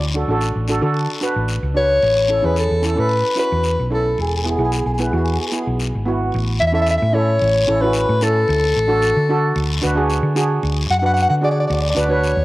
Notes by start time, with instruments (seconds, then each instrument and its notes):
Already playing: fingered electric bass D2
0.14 steel pan D4 F#4 A4
0.28 fingered electric bass A1, steel pan D4 F#4 A4
0.41 short guiro
0.56 fingered electric bass A1
0.68 steel pan D4 F#4 A4, short guiro
0.81 fingered electric bass D3, steel pan D4 F#4 A4
0.94 long guiro
1.21 steel pan D4 F#4 B4, short guiro
1.36 fingered electric bass A1
1.48 short guiro
1.63 fingered electric bass C#2
1.74 steel pan D4 F#4 B4, soprano saxophone C#5
2.02 fingered electric bass A1, long guiro
2.28 steel pan C#4 E4 A4
2.42 fingered electric bass E2, steel pan C#4 E4 G#4, soprano saxophone B4
2.56 soprano saxophone A4, short guiro
2.71 fingered electric bass E2
2.82 steel pan C#4 E4 A4, short guiro
2.95 fingered electric bass A2, steel pan C#4 E4 A4
3.00 soprano saxophone B4
3.09 long guiro
3.35 steel pan C#4 E4 F#4, soprano saxophone B4, short guiro
3.52 fingered electric bass E2
3.63 short guiro
3.79 fingered electric bass B1
3.90 steel pan C#4 E4 A4, soprano saxophone A4
4.18 fingered electric bass E1, soprano saxophone G#4, long guiro
4.27 soprano saxophone G#4
4.36 soprano saxophone G#4
4.43 steel pan B3 E4 G#4, soprano saxophone G#4
4.50 soprano saxophone G#4
4.56 fingered electric bass B1, steel pan B3 E4, soprano saxophone G#4
4.60 steel pan G#4
4.64 soprano saxophone G#4
4.72 soprano saxophone G#4, short guiro
4.78 soprano saxophone G#4
4.86 fingered electric bass B1, soprano saxophone G#4
4.94 soprano saxophone G#4
4.98 steel pan B3 E4 B4, short guiro
5.02 soprano saxophone G#4
5.10 fingered electric bass E2, steel pan B3 E4, soprano saxophone G#4
5.14 steel pan F#4, soprano saxophone G#4
5.24 soprano saxophone G#4, long guiro
5.32 soprano saxophone G#4
5.39 soprano saxophone G#4
5.47 soprano saxophone G#4
5.52 steel pan B3 E4 G#4, soprano saxophone G#4, short guiro
5.62 soprano saxophone G#4
5.67 fingered electric bass B1
5.80 short guiro
5.95 fingered electric bass G#1
6.06 steel pan B3 E4 F#4
6.32 fingered electric bass A1, long guiro
6.60 fingered electric bass E2, soprano saxophone E5
6.67 soprano saxophone E5
6.72 steel pan C#4 E4 A4, soprano saxophone E5
6.82 soprano saxophone E5
6.87 short guiro
6.91 soprano saxophone E5
6.97 soprano saxophone E5
7.02 fingered electric bass A2
7.12 steel pan C#4 E4 A4, soprano saxophone C#5
7.39 fingered electric bass A1, long guiro
7.67 fingered electric bass A1, steel pan C#4 E4 A4
7.81 steel pan C#4 E4 F#4, soprano saxophone B4
7.93 short guiro
8.09 fingered electric bass A2
8.21 steel pan C#4 E4 A4, soprano saxophone A4, short guiro
8.48 fingered electric bass D2, long guiro
8.76 fingered electric bass A1
8.87 steel pan D4 F#4 A4
9.02 short guiro
9.17 fingered electric bass D3
9.29 steel pan D4 F#4 A4
9.56 fingered electric bass D2, long guiro
9.82 fingered electric bass D2, steel pan D4 F#4 B4, short guiro
9.95 steel pan D4 F#4 G#4
10.10 short guiro
10.23 fingered electric bass D3
10.35 steel pan D4 F#4 G#4, short guiro
10.63 fingered electric bass D2, long guiro
10.90 fingered electric bass F#2, soprano saxophone F#5
10.99 steel pan D4 F#4 B4, soprano saxophone F#5
11.06 soprano saxophone F#5
11.14 soprano saxophone F#5, short guiro
11.22 soprano saxophone F#5
11.29 fingered electric bass D3, soprano saxophone F#5
11.41 steel pan D4 F#4 G#4, soprano saxophone D5
11.51 soprano saxophone D5
11.60 soprano saxophone D5
11.67 fingered electric bass D2, soprano saxophone D5, long guiro
11.74 soprano saxophone D5
11.82 soprano saxophone D5
11.90 soprano saxophone D5
11.95 fingered electric bass D2, steel pan D4 F#4 B4, soprano saxophone D5, short guiro
12.09 steel pan D4 F#4 B4, soprano saxophone C#5
12.24 short guiro
12.37 fingered electric bass D#2